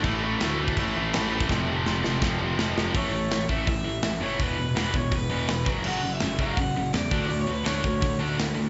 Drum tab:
CC |x---x---x---x---|----------------|----------------|----------------|
HH |----------------|----------------|o---o---o---o---|o---o---o---o---|
SD |----o-------o---|o---o-o-o---o-o-|----o-------o---|----o-------o---|
BD |o------oo------o|o-------o-------|o-----o-o-------|o-----o-o-----o-|

CC |x---------------|----------------|
HH |----o---o---o---|o---o---o---o---|
SD |----o-------o---|----o-------o---|
BD |------o-o-----o-|------o-o-------|